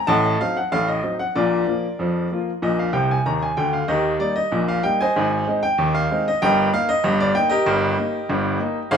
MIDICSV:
0, 0, Header, 1, 2, 480
1, 0, Start_track
1, 0, Key_signature, -3, "major"
1, 0, Tempo, 630915
1, 66, Time_signature, 2, 2, 24, 8
1, 6824, End_track
2, 0, Start_track
2, 0, Title_t, "Grand piano"
2, 0, Program_c, 0, 0
2, 55, Note_on_c, 0, 81, 121
2, 58, Note_on_c, 0, 33, 96
2, 62, Note_on_c, 0, 45, 106
2, 68, Note_on_c, 0, 75, 94
2, 69, Note_on_c, 0, 78, 92
2, 266, Note_off_c, 0, 33, 0
2, 268, Note_off_c, 0, 45, 0
2, 288, Note_off_c, 0, 81, 0
2, 290, Note_off_c, 0, 75, 0
2, 291, Note_off_c, 0, 78, 0
2, 310, Note_on_c, 0, 77, 104
2, 313, Note_on_c, 0, 54, 53
2, 313, Note_on_c, 0, 60, 57
2, 317, Note_on_c, 0, 63, 62
2, 428, Note_off_c, 0, 77, 0
2, 430, Note_on_c, 0, 78, 85
2, 443, Note_off_c, 0, 54, 0
2, 444, Note_off_c, 0, 60, 0
2, 447, Note_off_c, 0, 63, 0
2, 547, Note_on_c, 0, 33, 90
2, 547, Note_on_c, 0, 45, 88
2, 548, Note_on_c, 0, 77, 112
2, 549, Note_off_c, 0, 78, 0
2, 668, Note_off_c, 0, 77, 0
2, 671, Note_on_c, 0, 75, 90
2, 752, Note_off_c, 0, 33, 0
2, 752, Note_off_c, 0, 45, 0
2, 787, Note_on_c, 0, 60, 50
2, 788, Note_on_c, 0, 54, 52
2, 791, Note_on_c, 0, 63, 53
2, 863, Note_off_c, 0, 75, 0
2, 909, Note_on_c, 0, 78, 87
2, 920, Note_off_c, 0, 60, 0
2, 921, Note_off_c, 0, 54, 0
2, 923, Note_off_c, 0, 63, 0
2, 1030, Note_off_c, 0, 78, 0
2, 1031, Note_on_c, 0, 74, 96
2, 1033, Note_on_c, 0, 46, 93
2, 1035, Note_on_c, 0, 34, 79
2, 1041, Note_on_c, 0, 65, 77
2, 1046, Note_on_c, 0, 70, 74
2, 1237, Note_off_c, 0, 46, 0
2, 1238, Note_off_c, 0, 34, 0
2, 1264, Note_off_c, 0, 65, 0
2, 1268, Note_on_c, 0, 53, 50
2, 1275, Note_on_c, 0, 58, 51
2, 1276, Note_on_c, 0, 65, 58
2, 1401, Note_off_c, 0, 53, 0
2, 1406, Note_off_c, 0, 58, 0
2, 1407, Note_off_c, 0, 65, 0
2, 1516, Note_on_c, 0, 41, 81
2, 1521, Note_on_c, 0, 53, 83
2, 1719, Note_off_c, 0, 41, 0
2, 1723, Note_off_c, 0, 53, 0
2, 1761, Note_on_c, 0, 53, 47
2, 1763, Note_on_c, 0, 58, 48
2, 1769, Note_on_c, 0, 65, 57
2, 1802, Note_off_c, 0, 74, 0
2, 1892, Note_off_c, 0, 53, 0
2, 1893, Note_off_c, 0, 58, 0
2, 1898, Note_off_c, 0, 65, 0
2, 1973, Note_off_c, 0, 70, 0
2, 1995, Note_on_c, 0, 46, 82
2, 1996, Note_on_c, 0, 34, 80
2, 2000, Note_on_c, 0, 75, 91
2, 2118, Note_off_c, 0, 75, 0
2, 2124, Note_on_c, 0, 77, 81
2, 2200, Note_off_c, 0, 46, 0
2, 2201, Note_off_c, 0, 34, 0
2, 2228, Note_on_c, 0, 48, 76
2, 2229, Note_on_c, 0, 36, 82
2, 2229, Note_on_c, 0, 79, 89
2, 2240, Note_off_c, 0, 77, 0
2, 2353, Note_off_c, 0, 79, 0
2, 2368, Note_on_c, 0, 80, 91
2, 2412, Note_off_c, 0, 48, 0
2, 2413, Note_off_c, 0, 36, 0
2, 2479, Note_on_c, 0, 51, 78
2, 2479, Note_on_c, 0, 82, 97
2, 2483, Note_off_c, 0, 80, 0
2, 2483, Note_on_c, 0, 39, 80
2, 2599, Note_off_c, 0, 82, 0
2, 2606, Note_on_c, 0, 80, 87
2, 2659, Note_off_c, 0, 51, 0
2, 2662, Note_off_c, 0, 39, 0
2, 2716, Note_on_c, 0, 79, 87
2, 2719, Note_on_c, 0, 50, 82
2, 2721, Note_on_c, 0, 38, 75
2, 2722, Note_off_c, 0, 80, 0
2, 2838, Note_off_c, 0, 79, 0
2, 2839, Note_on_c, 0, 77, 81
2, 2900, Note_off_c, 0, 50, 0
2, 2901, Note_off_c, 0, 38, 0
2, 2953, Note_on_c, 0, 39, 85
2, 2953, Note_on_c, 0, 75, 98
2, 2954, Note_on_c, 0, 51, 95
2, 2958, Note_on_c, 0, 70, 77
2, 2960, Note_off_c, 0, 77, 0
2, 2962, Note_on_c, 0, 67, 77
2, 3148, Note_off_c, 0, 75, 0
2, 3161, Note_off_c, 0, 39, 0
2, 3161, Note_off_c, 0, 51, 0
2, 3183, Note_off_c, 0, 70, 0
2, 3185, Note_off_c, 0, 67, 0
2, 3192, Note_on_c, 0, 55, 54
2, 3195, Note_on_c, 0, 74, 97
2, 3198, Note_on_c, 0, 58, 49
2, 3204, Note_on_c, 0, 63, 61
2, 3315, Note_on_c, 0, 75, 99
2, 3318, Note_off_c, 0, 74, 0
2, 3327, Note_off_c, 0, 55, 0
2, 3331, Note_off_c, 0, 58, 0
2, 3335, Note_off_c, 0, 63, 0
2, 3437, Note_on_c, 0, 34, 89
2, 3440, Note_on_c, 0, 46, 89
2, 3510, Note_off_c, 0, 75, 0
2, 3563, Note_on_c, 0, 77, 96
2, 3643, Note_off_c, 0, 34, 0
2, 3645, Note_off_c, 0, 46, 0
2, 3677, Note_on_c, 0, 79, 100
2, 3678, Note_on_c, 0, 55, 55
2, 3682, Note_off_c, 0, 77, 0
2, 3682, Note_on_c, 0, 58, 57
2, 3688, Note_on_c, 0, 63, 61
2, 3799, Note_off_c, 0, 79, 0
2, 3808, Note_on_c, 0, 80, 112
2, 3811, Note_off_c, 0, 55, 0
2, 3814, Note_off_c, 0, 58, 0
2, 3816, Note_on_c, 0, 75, 86
2, 3818, Note_off_c, 0, 63, 0
2, 3818, Note_on_c, 0, 72, 82
2, 3928, Note_on_c, 0, 44, 99
2, 3929, Note_on_c, 0, 32, 86
2, 4128, Note_off_c, 0, 32, 0
2, 4128, Note_off_c, 0, 44, 0
2, 4164, Note_on_c, 0, 56, 64
2, 4171, Note_on_c, 0, 60, 56
2, 4175, Note_on_c, 0, 63, 62
2, 4188, Note_off_c, 0, 80, 0
2, 4256, Note_off_c, 0, 75, 0
2, 4257, Note_off_c, 0, 72, 0
2, 4281, Note_on_c, 0, 79, 111
2, 4294, Note_off_c, 0, 56, 0
2, 4299, Note_off_c, 0, 60, 0
2, 4302, Note_off_c, 0, 63, 0
2, 4399, Note_on_c, 0, 39, 97
2, 4401, Note_on_c, 0, 51, 98
2, 4507, Note_off_c, 0, 79, 0
2, 4523, Note_on_c, 0, 77, 106
2, 4602, Note_off_c, 0, 39, 0
2, 4603, Note_off_c, 0, 51, 0
2, 4649, Note_on_c, 0, 56, 66
2, 4650, Note_on_c, 0, 60, 60
2, 4653, Note_on_c, 0, 63, 66
2, 4748, Note_off_c, 0, 77, 0
2, 4777, Note_on_c, 0, 75, 104
2, 4778, Note_off_c, 0, 56, 0
2, 4778, Note_off_c, 0, 60, 0
2, 4781, Note_off_c, 0, 63, 0
2, 4884, Note_off_c, 0, 75, 0
2, 4884, Note_on_c, 0, 79, 120
2, 4887, Note_on_c, 0, 31, 97
2, 4887, Note_on_c, 0, 43, 107
2, 4895, Note_on_c, 0, 70, 91
2, 4895, Note_on_c, 0, 75, 99
2, 5073, Note_off_c, 0, 79, 0
2, 5086, Note_off_c, 0, 31, 0
2, 5086, Note_off_c, 0, 43, 0
2, 5109, Note_off_c, 0, 70, 0
2, 5109, Note_off_c, 0, 75, 0
2, 5120, Note_on_c, 0, 58, 65
2, 5123, Note_on_c, 0, 63, 69
2, 5125, Note_on_c, 0, 77, 119
2, 5240, Note_off_c, 0, 77, 0
2, 5240, Note_on_c, 0, 75, 119
2, 5251, Note_off_c, 0, 58, 0
2, 5252, Note_off_c, 0, 63, 0
2, 5355, Note_on_c, 0, 31, 107
2, 5355, Note_on_c, 0, 43, 109
2, 5465, Note_off_c, 0, 75, 0
2, 5481, Note_on_c, 0, 74, 110
2, 5558, Note_off_c, 0, 31, 0
2, 5558, Note_off_c, 0, 43, 0
2, 5591, Note_on_c, 0, 79, 115
2, 5595, Note_on_c, 0, 58, 62
2, 5597, Note_off_c, 0, 74, 0
2, 5597, Note_on_c, 0, 63, 78
2, 5702, Note_on_c, 0, 75, 116
2, 5712, Note_off_c, 0, 79, 0
2, 5712, Note_on_c, 0, 67, 94
2, 5714, Note_on_c, 0, 70, 96
2, 5726, Note_off_c, 0, 58, 0
2, 5727, Note_off_c, 0, 63, 0
2, 5829, Note_on_c, 0, 43, 115
2, 5832, Note_on_c, 0, 31, 108
2, 6034, Note_off_c, 0, 43, 0
2, 6035, Note_off_c, 0, 31, 0
2, 6070, Note_on_c, 0, 58, 63
2, 6074, Note_on_c, 0, 63, 70
2, 6202, Note_off_c, 0, 58, 0
2, 6205, Note_off_c, 0, 63, 0
2, 6310, Note_on_c, 0, 43, 100
2, 6312, Note_on_c, 0, 31, 102
2, 6514, Note_off_c, 0, 43, 0
2, 6515, Note_off_c, 0, 31, 0
2, 6539, Note_on_c, 0, 58, 66
2, 6544, Note_on_c, 0, 63, 68
2, 6674, Note_off_c, 0, 58, 0
2, 6677, Note_off_c, 0, 63, 0
2, 6753, Note_off_c, 0, 75, 0
2, 6758, Note_off_c, 0, 67, 0
2, 6760, Note_off_c, 0, 70, 0
2, 6779, Note_on_c, 0, 77, 126
2, 6782, Note_on_c, 0, 32, 106
2, 6783, Note_on_c, 0, 44, 115
2, 6787, Note_on_c, 0, 72, 87
2, 6792, Note_on_c, 0, 68, 89
2, 6824, Note_off_c, 0, 32, 0
2, 6824, Note_off_c, 0, 44, 0
2, 6824, Note_off_c, 0, 68, 0
2, 6824, Note_off_c, 0, 72, 0
2, 6824, Note_off_c, 0, 77, 0
2, 6824, End_track
0, 0, End_of_file